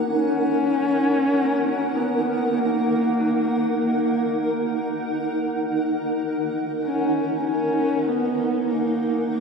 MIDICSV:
0, 0, Header, 1, 3, 480
1, 0, Start_track
1, 0, Key_signature, -6, "minor"
1, 0, Tempo, 1224490
1, 39, Time_signature, 4, 2, 24, 8
1, 3685, End_track
2, 0, Start_track
2, 0, Title_t, "Ambient pad"
2, 0, Program_c, 0, 92
2, 0, Note_on_c, 0, 63, 69
2, 0, Note_on_c, 0, 70, 72
2, 0, Note_on_c, 0, 78, 70
2, 3685, Note_off_c, 0, 63, 0
2, 3685, Note_off_c, 0, 70, 0
2, 3685, Note_off_c, 0, 78, 0
2, 3685, End_track
3, 0, Start_track
3, 0, Title_t, "Horsehead fiddle"
3, 0, Program_c, 1, 110
3, 44, Note_on_c, 1, 61, 96
3, 766, Note_on_c, 1, 59, 70
3, 772, Note_off_c, 1, 61, 0
3, 1013, Note_on_c, 1, 58, 79
3, 1019, Note_off_c, 1, 59, 0
3, 1483, Note_off_c, 1, 58, 0
3, 1485, Note_on_c, 1, 58, 65
3, 1826, Note_off_c, 1, 58, 0
3, 2684, Note_on_c, 1, 61, 61
3, 2906, Note_off_c, 1, 61, 0
3, 2918, Note_on_c, 1, 61, 76
3, 3168, Note_on_c, 1, 59, 67
3, 3174, Note_off_c, 1, 61, 0
3, 3413, Note_on_c, 1, 58, 68
3, 3419, Note_off_c, 1, 59, 0
3, 3685, Note_off_c, 1, 58, 0
3, 3685, End_track
0, 0, End_of_file